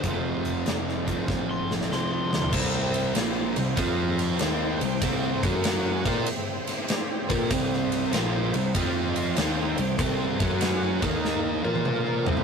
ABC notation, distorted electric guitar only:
X:1
M:4/4
L:1/8
Q:"Swing" 1/4=96
K:F
V:1 name="Distorted electric guitar" clef=bass
[F,,C,F,]3 [F,,C,F,]3 [F,,C,F,]2 | [C,G,C]2 [B,,F,B,] [C,G,] [F,CF]2 [_E,B,_E] [C,G,] | [C,G,C] [^F,^C^F]2 [B,=FB] z3 [B,FB] | [C,G,C]2 [B,,F,B,] [C,G,] [F,CF]2 [_E,B,_E] [C,G,] |
[C,G,C] [^F,^C^F]2 [_E,B,_E]2 [B,=FB]2 [=C,G,=C] |]